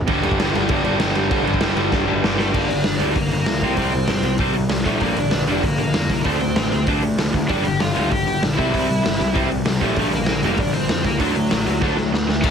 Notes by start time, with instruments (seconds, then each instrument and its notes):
0.07 picked electric bass G1, distorted electric guitar G2 D3 G3, kick, crash
0.23 picked electric bass G1, distorted electric guitar G2 D3 G3, crash
0.31 kick
0.40 picked electric bass G1, distorted electric guitar G2 D3 G3, snare, crash
0.55 picked electric bass G1, distorted electric guitar G2 D3 G3, crash
0.69 picked electric bass G1, distorted electric guitar G2 D3 G3, kick, crash
0.84 picked electric bass G1, distorted electric guitar G2 D3 G3, crash
1.00 picked electric bass G1, distorted electric guitar G2 D3 G3, snare, crash
1.15 picked electric bass G1, distorted electric guitar G2 D3 G3, crash
1.30 picked electric bass G1, distorted electric guitar G2 D3 G3, kick, crash
1.45 picked electric bass G1, distorted electric guitar G2 D3 G3, crash
1.54 kick
1.61 picked electric bass G1, distorted electric guitar G2 D3 G3, snare, crash
1.76 picked electric bass G1, distorted electric guitar G2 D3 G3, crash
1.92 picked electric bass G1, distorted electric guitar G2 D3 G3, kick, snare
2.07 distorted electric guitar G2 D3 G3
2.23 picked electric bass G1, distorted electric guitar G2 D3 G3, snare
2.39 distorted electric guitar G2 D3 G3, lead electric guitar A3 A4, snare
2.52 picked electric bass G1, distorted electric guitar G2 D3 G3, lead electric guitar A#3 A#4, kick, crash
2.68 picked electric bass G1, distorted electric guitar G2 D3, lead electric guitar D4 D5, open hi-hat
2.84 picked electric bass G1, distorted electric guitar G2 D3, snare, open hi-hat
2.97 picked electric bass D2, lead electric guitar D5, open hi-hat
3.01 distorted electric guitar G2 D3 G3, lead electric guitar D4
3.11 lead electric guitar A#4
3.16 picked electric bass G1, distorted electric guitar G2 D3, lead electric guitar A#3, kick, open hi-hat
3.31 picked electric bass G1, distorted electric guitar G2 D3, open hi-hat
3.41 lead electric guitar A#4
3.46 picked electric bass D2, distorted electric guitar G2 D3, lead electric guitar A#3, snare, open hi-hat
3.61 picked electric bass C2, distorted electric guitar C3 G3 C4, kick, open hi-hat
3.73 distorted electric guitar C3, lead electric guitar C5, open hi-hat
3.77 picked electric bass C2, distorted electric guitar G3 C4, lead electric guitar C4, kick
3.92 picked electric bass C2, distorted electric guitar C3 G3, open hi-hat
4.08 picked electric bass G1, distorted electric guitar C3 G3, snare, open hi-hat
4.23 picked electric bass C2, distorted electric guitar C3 G3, open hi-hat
4.38 picked electric bass C2, distorted electric guitar C3 G3 C4, kick, open hi-hat
4.53 picked electric bass C2, distorted electric guitar C3 G3, open hi-hat
4.69 picked electric bass C2, distorted electric guitar C3 G3, snare, open hi-hat
4.85 picked electric bass A#1, distorted electric guitar G2 D3 G3, lead electric guitar A3 A4, kick, open hi-hat
5.00 picked electric bass A#1, distorted electric guitar G2 D3 G3, lead electric guitar A#3 A#4, kick, open hi-hat
5.16 picked electric bass A#1, distorted electric guitar G2 D3, lead electric guitar D4 D5, open hi-hat
5.31 picked electric bass A#1, distorted electric guitar G2 D3, lead electric guitar D4 D5, snare, open hi-hat
5.47 picked electric bass F1, distorted electric guitar G2 D3 G3, lead electric guitar D4, open hi-hat
5.52 lead electric guitar D5
5.63 picked electric bass A#1, distorted electric guitar G2 D3, lead electric guitar A#3 A#4, kick, open hi-hat
5.78 picked electric bass A#1, distorted electric guitar G2 D3, open hi-hat
5.94 picked electric bass F2, distorted electric guitar G2 D3, snare, open hi-hat
6.10 picked electric bass C2, distorted electric guitar G2 D3, kick, open hi-hat
6.24 picked electric bass D2, distorted electric guitar D3 A3 D4, lead electric guitar C4 C5, kick, open hi-hat
6.41 picked electric bass D2, distorted electric guitar D3 A3, open hi-hat
6.56 picked electric bass A1, distorted electric guitar D3 A3, snare, open hi-hat
6.71 picked electric bass D2, distorted electric guitar D3 A3, open hi-hat
6.87 picked electric bass D2, distorted electric guitar D3 A3 D4, kick, open hi-hat
7.02 picked electric bass D2, distorted electric guitar D3 A3, open hi-hat
7.18 picked electric bass D2, distorted electric guitar D3 A3, snare, open hi-hat
7.34 picked electric bass D2, distorted electric guitar D3 A3, kick, open hi-hat
7.48 picked electric bass G1, distorted electric guitar G2 D3 G3, lead electric guitar D4 D5, kick, open hi-hat
7.62 distorted electric guitar G2 D3, lead electric guitar G4 G5, open hi-hat
7.66 picked electric bass G1
7.80 picked electric bass G1, distorted electric guitar G2 D3, lead electric guitar F4 F5, snare, open hi-hat
7.93 picked electric bass D2, distorted electric guitar G2 D3 G3, lead electric guitar F4 F5, open hi-hat
8.09 picked electric bass G1, distorted electric guitar G2 D3, lead electric guitar G4 G5, kick, open hi-hat
8.27 picked electric bass G1, distorted electric guitar G2 D3, open hi-hat
8.43 picked electric bass A#1, distorted electric guitar G2 D3, snare, open hi-hat
8.55 picked electric bass C2, distorted electric guitar C3 G3 C4, lead electric guitar E4 E5, kick
8.59 open hi-hat
8.72 picked electric bass C2, distorted electric guitar C3 G3 C4, kick, open hi-hat
8.88 picked electric bass C2, distorted electric guitar C3 G3, open hi-hat
9.02 picked electric bass G1, distorted electric guitar C3 G3, snare, open hi-hat
9.19 picked electric bass C2, distorted electric guitar C3 G3, open hi-hat
9.34 picked electric bass C2, distorted electric guitar C3 G3 C4, kick, open hi-hat
9.50 picked electric bass C2, distorted electric guitar C3 G3, open hi-hat
9.66 picked electric bass C2, distorted electric guitar C3 G3, snare, open hi-hat
9.81 picked electric bass A#1, distorted electric guitar G2 D3 G3, lead electric guitar A3 A4, kick, open hi-hat
9.96 picked electric bass A#1, distorted electric guitar G2 D3 G3, kick, open hi-hat
10.12 picked electric bass A#1, distorted electric guitar G2 D3, lead electric guitar A#3 A#4, open hi-hat
10.26 picked electric bass A#1, distorted electric guitar G2 D3, snare, open hi-hat
10.43 picked electric bass F1, distorted electric guitar G2 D3 G3, lead electric guitar A#3 A#4, open hi-hat
10.58 picked electric bass A#1, distorted electric guitar G2 D3, lead electric guitar D4 D5, kick, open hi-hat
10.73 picked electric bass A#1, distorted electric guitar G2 D3, lead electric guitar C4 C5, open hi-hat
10.89 picked electric bass F2, distorted electric guitar G2 D3, snare, open hi-hat
11.04 picked electric bass C#2, distorted electric guitar G2 D3, lead electric guitar A#3 A#4, kick, open hi-hat
11.20 picked electric bass D2, distorted electric guitar D3 A3 D4, lead electric guitar F#3 F#4, kick, open hi-hat
11.36 picked electric bass D2, distorted electric guitar D3 A3, open hi-hat
11.51 picked electric bass A1, distorted electric guitar D3 A3, snare, open hi-hat
11.67 picked electric bass D2, distorted electric guitar D3 A3, open hi-hat
11.82 picked electric bass D2, distorted electric guitar D3 A3 D4, kick, snare
11.97 picked electric bass D2, distorted electric guitar D3 A3, snare
12.13 picked electric bass D2, distorted electric guitar D3 A3, snare
12.28 picked electric bass D2, distorted electric guitar D3 A3, snare
12.42 picked electric bass D2, distorted electric guitar D3 A3 D4, lead electric guitar A3 A4, kick, crash